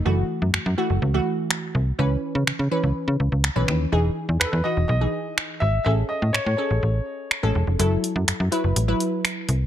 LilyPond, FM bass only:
\new Staff \with { instrumentName = "FM bass" } { \clef bass \time 4/4 \key fis \dorian \tempo 4 = 124 fis,,8 r16 fis,16 fis,16 fis,16 r16 fis,,16 cis,8 r4 bis,,8 | cis,8 r16 cis16 cis16 cis16 r16 cis,16 r16 cis16 cis,16 cis,8 b,,16 dis,8 | e,,8 r16 e,16 e,16 e,16 r16 e,,16 b,,8 r4 gis,,8 | a,,8 r16 a,16 a,16 a,16 r16 a,,16 a,,8 r8. a,,16 e,,16 eis,,16 |
fis,,8 r16 fis,16 fis,16 fis,16 r16 fis,,16 a,,8 r4 bis,,8 | }